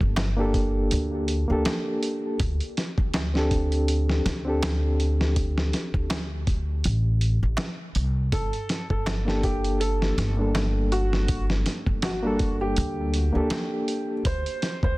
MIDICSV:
0, 0, Header, 1, 6, 480
1, 0, Start_track
1, 0, Key_signature, -2, "minor"
1, 0, Tempo, 740741
1, 1549, Time_signature, 4, 2, 24, 8
1, 9706, End_track
2, 0, Start_track
2, 0, Title_t, "Felt piano"
2, 0, Program_c, 0, 0
2, 5395, Note_on_c, 0, 69, 94
2, 5726, Note_off_c, 0, 69, 0
2, 5770, Note_on_c, 0, 69, 87
2, 6081, Note_off_c, 0, 69, 0
2, 6115, Note_on_c, 0, 67, 85
2, 6331, Note_off_c, 0, 67, 0
2, 6352, Note_on_c, 0, 69, 87
2, 6685, Note_off_c, 0, 69, 0
2, 7077, Note_on_c, 0, 66, 107
2, 7407, Note_off_c, 0, 66, 0
2, 7800, Note_on_c, 0, 66, 85
2, 8129, Note_off_c, 0, 66, 0
2, 8171, Note_on_c, 0, 67, 91
2, 9149, Note_off_c, 0, 67, 0
2, 9242, Note_on_c, 0, 72, 102
2, 9570, Note_off_c, 0, 72, 0
2, 9616, Note_on_c, 0, 72, 89
2, 9706, Note_off_c, 0, 72, 0
2, 9706, End_track
3, 0, Start_track
3, 0, Title_t, "Reed electric piano"
3, 0, Program_c, 1, 4
3, 0, Note_on_c, 1, 58, 77
3, 0, Note_on_c, 1, 62, 72
3, 0, Note_on_c, 1, 67, 70
3, 0, Note_on_c, 1, 69, 86
3, 208, Note_off_c, 1, 58, 0
3, 212, Note_off_c, 1, 62, 0
3, 218, Note_off_c, 1, 67, 0
3, 223, Note_off_c, 1, 69, 0
3, 235, Note_on_c, 1, 58, 98
3, 246, Note_on_c, 1, 62, 87
3, 253, Note_on_c, 1, 67, 89
3, 263, Note_on_c, 1, 69, 96
3, 933, Note_off_c, 1, 58, 0
3, 938, Note_off_c, 1, 62, 0
3, 942, Note_off_c, 1, 67, 0
3, 946, Note_off_c, 1, 69, 0
3, 958, Note_on_c, 1, 58, 82
3, 968, Note_on_c, 1, 62, 74
3, 978, Note_on_c, 1, 67, 75
3, 986, Note_on_c, 1, 69, 91
3, 1534, Note_off_c, 1, 58, 0
3, 1539, Note_off_c, 1, 62, 0
3, 1544, Note_off_c, 1, 67, 0
3, 1548, Note_off_c, 1, 69, 0
3, 2163, Note_on_c, 1, 60, 84
3, 2172, Note_on_c, 1, 62, 83
3, 2182, Note_on_c, 1, 67, 85
3, 2191, Note_on_c, 1, 69, 98
3, 2851, Note_off_c, 1, 60, 0
3, 2856, Note_off_c, 1, 62, 0
3, 2861, Note_off_c, 1, 67, 0
3, 2865, Note_off_c, 1, 69, 0
3, 2883, Note_on_c, 1, 60, 79
3, 2893, Note_on_c, 1, 62, 73
3, 2902, Note_on_c, 1, 67, 77
3, 2912, Note_on_c, 1, 69, 85
3, 4051, Note_off_c, 1, 60, 0
3, 4056, Note_off_c, 1, 62, 0
3, 4061, Note_off_c, 1, 67, 0
3, 4066, Note_off_c, 1, 69, 0
3, 5994, Note_on_c, 1, 58, 85
3, 6004, Note_on_c, 1, 62, 83
3, 6011, Note_on_c, 1, 67, 84
3, 6024, Note_on_c, 1, 69, 98
3, 6687, Note_off_c, 1, 58, 0
3, 6692, Note_off_c, 1, 62, 0
3, 6695, Note_off_c, 1, 67, 0
3, 6701, Note_off_c, 1, 69, 0
3, 6719, Note_on_c, 1, 58, 78
3, 6730, Note_on_c, 1, 62, 72
3, 6739, Note_on_c, 1, 55, 67
3, 6748, Note_on_c, 1, 69, 83
3, 7889, Note_off_c, 1, 58, 0
3, 7895, Note_off_c, 1, 62, 0
3, 7899, Note_off_c, 1, 55, 0
3, 7904, Note_off_c, 1, 69, 0
3, 7922, Note_on_c, 1, 58, 96
3, 7932, Note_on_c, 1, 62, 92
3, 7940, Note_on_c, 1, 55, 88
3, 7950, Note_on_c, 1, 69, 105
3, 8616, Note_off_c, 1, 58, 0
3, 8621, Note_off_c, 1, 62, 0
3, 8625, Note_off_c, 1, 55, 0
3, 8630, Note_off_c, 1, 69, 0
3, 8634, Note_on_c, 1, 58, 82
3, 8642, Note_on_c, 1, 62, 79
3, 8654, Note_on_c, 1, 67, 77
3, 8661, Note_on_c, 1, 69, 88
3, 9212, Note_off_c, 1, 58, 0
3, 9216, Note_off_c, 1, 62, 0
3, 9222, Note_off_c, 1, 67, 0
3, 9226, Note_off_c, 1, 69, 0
3, 9706, End_track
4, 0, Start_track
4, 0, Title_t, "Upright bass"
4, 0, Program_c, 2, 32
4, 7, Note_on_c, 2, 31, 84
4, 571, Note_off_c, 2, 31, 0
4, 596, Note_on_c, 2, 38, 110
4, 941, Note_off_c, 2, 38, 0
4, 971, Note_on_c, 2, 38, 82
4, 1060, Note_off_c, 2, 38, 0
4, 1556, Note_on_c, 2, 38, 100
4, 1671, Note_off_c, 2, 38, 0
4, 1932, Note_on_c, 2, 38, 83
4, 2733, Note_off_c, 2, 38, 0
4, 2758, Note_on_c, 2, 38, 100
4, 3693, Note_off_c, 2, 38, 0
4, 3850, Note_on_c, 2, 38, 88
4, 4412, Note_off_c, 2, 38, 0
4, 4440, Note_on_c, 2, 33, 105
4, 4784, Note_off_c, 2, 33, 0
4, 4813, Note_on_c, 2, 33, 82
4, 4901, Note_off_c, 2, 33, 0
4, 5155, Note_on_c, 2, 36, 100
4, 5367, Note_off_c, 2, 36, 0
4, 5395, Note_on_c, 2, 31, 94
4, 5511, Note_off_c, 2, 31, 0
4, 5769, Note_on_c, 2, 31, 86
4, 6572, Note_off_c, 2, 31, 0
4, 6594, Note_on_c, 2, 31, 91
4, 7532, Note_off_c, 2, 31, 0
4, 7690, Note_on_c, 2, 31, 85
4, 8252, Note_off_c, 2, 31, 0
4, 8279, Note_on_c, 2, 38, 117
4, 8623, Note_off_c, 2, 38, 0
4, 8651, Note_on_c, 2, 38, 85
4, 8740, Note_off_c, 2, 38, 0
4, 9238, Note_on_c, 2, 38, 96
4, 9352, Note_off_c, 2, 38, 0
4, 9614, Note_on_c, 2, 38, 93
4, 9706, Note_off_c, 2, 38, 0
4, 9706, End_track
5, 0, Start_track
5, 0, Title_t, "Darbuka"
5, 106, Note_on_c, 9, 63, 92
5, 171, Note_off_c, 9, 63, 0
5, 1077, Note_on_c, 9, 63, 74
5, 1141, Note_off_c, 9, 63, 0
5, 2041, Note_on_c, 9, 63, 76
5, 2106, Note_off_c, 9, 63, 0
5, 2997, Note_on_c, 9, 63, 75
5, 3062, Note_off_c, 9, 63, 0
5, 3952, Note_on_c, 9, 63, 74
5, 4017, Note_off_c, 9, 63, 0
5, 4904, Note_on_c, 9, 63, 81
5, 4969, Note_off_c, 9, 63, 0
5, 5872, Note_on_c, 9, 63, 77
5, 5937, Note_off_c, 9, 63, 0
5, 6835, Note_on_c, 9, 63, 86
5, 6900, Note_off_c, 9, 63, 0
5, 7793, Note_on_c, 9, 63, 80
5, 7858, Note_off_c, 9, 63, 0
5, 8757, Note_on_c, 9, 63, 76
5, 8821, Note_off_c, 9, 63, 0
5, 9706, End_track
6, 0, Start_track
6, 0, Title_t, "Drums"
6, 4, Note_on_c, 9, 36, 95
6, 69, Note_off_c, 9, 36, 0
6, 109, Note_on_c, 9, 42, 85
6, 112, Note_on_c, 9, 38, 114
6, 174, Note_off_c, 9, 42, 0
6, 177, Note_off_c, 9, 38, 0
6, 350, Note_on_c, 9, 36, 101
6, 351, Note_on_c, 9, 42, 66
6, 415, Note_off_c, 9, 36, 0
6, 415, Note_off_c, 9, 42, 0
6, 590, Note_on_c, 9, 42, 87
6, 655, Note_off_c, 9, 42, 0
6, 830, Note_on_c, 9, 42, 71
6, 894, Note_off_c, 9, 42, 0
6, 1071, Note_on_c, 9, 42, 89
6, 1074, Note_on_c, 9, 38, 111
6, 1136, Note_off_c, 9, 42, 0
6, 1139, Note_off_c, 9, 38, 0
6, 1313, Note_on_c, 9, 42, 68
6, 1378, Note_off_c, 9, 42, 0
6, 1552, Note_on_c, 9, 42, 85
6, 1554, Note_on_c, 9, 36, 106
6, 1617, Note_off_c, 9, 42, 0
6, 1618, Note_off_c, 9, 36, 0
6, 1688, Note_on_c, 9, 42, 44
6, 1753, Note_off_c, 9, 42, 0
6, 1797, Note_on_c, 9, 42, 68
6, 1800, Note_on_c, 9, 38, 50
6, 1861, Note_off_c, 9, 42, 0
6, 1865, Note_off_c, 9, 38, 0
6, 1929, Note_on_c, 9, 36, 95
6, 1994, Note_off_c, 9, 36, 0
6, 2032, Note_on_c, 9, 42, 80
6, 2035, Note_on_c, 9, 38, 109
6, 2097, Note_off_c, 9, 42, 0
6, 2100, Note_off_c, 9, 38, 0
6, 2172, Note_on_c, 9, 38, 42
6, 2237, Note_off_c, 9, 38, 0
6, 2274, Note_on_c, 9, 42, 70
6, 2276, Note_on_c, 9, 36, 96
6, 2339, Note_off_c, 9, 42, 0
6, 2341, Note_off_c, 9, 36, 0
6, 2410, Note_on_c, 9, 42, 42
6, 2475, Note_off_c, 9, 42, 0
6, 2516, Note_on_c, 9, 42, 84
6, 2581, Note_off_c, 9, 42, 0
6, 2653, Note_on_c, 9, 38, 47
6, 2718, Note_off_c, 9, 38, 0
6, 2759, Note_on_c, 9, 42, 73
6, 2762, Note_on_c, 9, 38, 56
6, 2824, Note_off_c, 9, 42, 0
6, 2827, Note_off_c, 9, 38, 0
6, 2997, Note_on_c, 9, 42, 90
6, 3001, Note_on_c, 9, 38, 118
6, 3062, Note_off_c, 9, 42, 0
6, 3065, Note_off_c, 9, 38, 0
6, 3239, Note_on_c, 9, 42, 62
6, 3303, Note_off_c, 9, 42, 0
6, 3375, Note_on_c, 9, 38, 55
6, 3440, Note_off_c, 9, 38, 0
6, 3475, Note_on_c, 9, 36, 106
6, 3475, Note_on_c, 9, 42, 90
6, 3540, Note_off_c, 9, 36, 0
6, 3540, Note_off_c, 9, 42, 0
6, 3613, Note_on_c, 9, 38, 56
6, 3678, Note_off_c, 9, 38, 0
6, 3715, Note_on_c, 9, 42, 72
6, 3719, Note_on_c, 9, 38, 45
6, 3780, Note_off_c, 9, 42, 0
6, 3783, Note_off_c, 9, 38, 0
6, 3849, Note_on_c, 9, 36, 96
6, 3914, Note_off_c, 9, 36, 0
6, 3954, Note_on_c, 9, 42, 86
6, 3957, Note_on_c, 9, 38, 114
6, 4018, Note_off_c, 9, 42, 0
6, 4022, Note_off_c, 9, 38, 0
6, 4193, Note_on_c, 9, 42, 67
6, 4194, Note_on_c, 9, 36, 97
6, 4258, Note_off_c, 9, 36, 0
6, 4258, Note_off_c, 9, 42, 0
6, 4433, Note_on_c, 9, 42, 87
6, 4498, Note_off_c, 9, 42, 0
6, 4673, Note_on_c, 9, 42, 65
6, 4738, Note_off_c, 9, 42, 0
6, 4909, Note_on_c, 9, 42, 89
6, 4912, Note_on_c, 9, 38, 117
6, 4974, Note_off_c, 9, 42, 0
6, 4977, Note_off_c, 9, 38, 0
6, 5151, Note_on_c, 9, 42, 64
6, 5216, Note_off_c, 9, 42, 0
6, 5393, Note_on_c, 9, 36, 118
6, 5393, Note_on_c, 9, 42, 93
6, 5458, Note_off_c, 9, 36, 0
6, 5458, Note_off_c, 9, 42, 0
6, 5528, Note_on_c, 9, 42, 44
6, 5593, Note_off_c, 9, 42, 0
6, 5633, Note_on_c, 9, 42, 75
6, 5636, Note_on_c, 9, 38, 54
6, 5698, Note_off_c, 9, 42, 0
6, 5701, Note_off_c, 9, 38, 0
6, 5768, Note_on_c, 9, 36, 97
6, 5833, Note_off_c, 9, 36, 0
6, 5875, Note_on_c, 9, 42, 80
6, 5878, Note_on_c, 9, 38, 112
6, 5940, Note_off_c, 9, 42, 0
6, 5943, Note_off_c, 9, 38, 0
6, 6013, Note_on_c, 9, 38, 42
6, 6078, Note_off_c, 9, 38, 0
6, 6113, Note_on_c, 9, 36, 92
6, 6114, Note_on_c, 9, 42, 70
6, 6178, Note_off_c, 9, 36, 0
6, 6178, Note_off_c, 9, 42, 0
6, 6250, Note_on_c, 9, 42, 41
6, 6314, Note_off_c, 9, 42, 0
6, 6356, Note_on_c, 9, 42, 86
6, 6421, Note_off_c, 9, 42, 0
6, 6494, Note_on_c, 9, 38, 51
6, 6559, Note_off_c, 9, 38, 0
6, 6597, Note_on_c, 9, 42, 69
6, 6600, Note_on_c, 9, 38, 54
6, 6662, Note_off_c, 9, 42, 0
6, 6665, Note_off_c, 9, 38, 0
6, 6835, Note_on_c, 9, 42, 87
6, 6839, Note_on_c, 9, 38, 117
6, 6900, Note_off_c, 9, 42, 0
6, 6903, Note_off_c, 9, 38, 0
6, 7076, Note_on_c, 9, 42, 66
6, 7141, Note_off_c, 9, 42, 0
6, 7213, Note_on_c, 9, 38, 53
6, 7277, Note_off_c, 9, 38, 0
6, 7312, Note_on_c, 9, 42, 95
6, 7314, Note_on_c, 9, 36, 121
6, 7377, Note_off_c, 9, 42, 0
6, 7379, Note_off_c, 9, 36, 0
6, 7451, Note_on_c, 9, 38, 53
6, 7516, Note_off_c, 9, 38, 0
6, 7554, Note_on_c, 9, 42, 72
6, 7557, Note_on_c, 9, 38, 46
6, 7619, Note_off_c, 9, 42, 0
6, 7622, Note_off_c, 9, 38, 0
6, 7688, Note_on_c, 9, 36, 99
6, 7753, Note_off_c, 9, 36, 0
6, 7791, Note_on_c, 9, 42, 85
6, 7794, Note_on_c, 9, 38, 118
6, 7856, Note_off_c, 9, 42, 0
6, 7859, Note_off_c, 9, 38, 0
6, 8031, Note_on_c, 9, 42, 68
6, 8034, Note_on_c, 9, 36, 92
6, 8096, Note_off_c, 9, 42, 0
6, 8099, Note_off_c, 9, 36, 0
6, 8272, Note_on_c, 9, 42, 90
6, 8336, Note_off_c, 9, 42, 0
6, 8512, Note_on_c, 9, 42, 69
6, 8577, Note_off_c, 9, 42, 0
6, 8750, Note_on_c, 9, 42, 91
6, 8753, Note_on_c, 9, 38, 117
6, 8814, Note_off_c, 9, 42, 0
6, 8818, Note_off_c, 9, 38, 0
6, 8994, Note_on_c, 9, 42, 67
6, 9059, Note_off_c, 9, 42, 0
6, 9234, Note_on_c, 9, 36, 119
6, 9234, Note_on_c, 9, 42, 89
6, 9299, Note_off_c, 9, 36, 0
6, 9299, Note_off_c, 9, 42, 0
6, 9372, Note_on_c, 9, 42, 50
6, 9436, Note_off_c, 9, 42, 0
6, 9475, Note_on_c, 9, 42, 72
6, 9479, Note_on_c, 9, 38, 53
6, 9540, Note_off_c, 9, 42, 0
6, 9543, Note_off_c, 9, 38, 0
6, 9609, Note_on_c, 9, 36, 92
6, 9674, Note_off_c, 9, 36, 0
6, 9706, End_track
0, 0, End_of_file